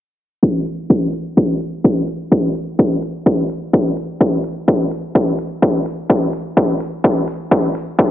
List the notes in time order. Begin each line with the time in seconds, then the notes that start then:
0.43 kick
0.66 open hi-hat
0.90 kick
1.13 open hi-hat
1.37 kick
1.61 open hi-hat
1.84 kick
2.08 open hi-hat
2.32 kick
2.55 open hi-hat
2.79 kick
3.02 open hi-hat
3.26 kick
3.50 open hi-hat
3.73 kick
3.97 open hi-hat
4.21 kick
4.44 open hi-hat
4.68 kick
4.91 open hi-hat
5.15 kick
5.39 open hi-hat
5.62 kick
5.86 open hi-hat
6.10 kick
6.33 open hi-hat
6.57 kick
6.80 open hi-hat
7.04 kick
7.28 open hi-hat
7.51 kick
7.75 open hi-hat
7.99 kick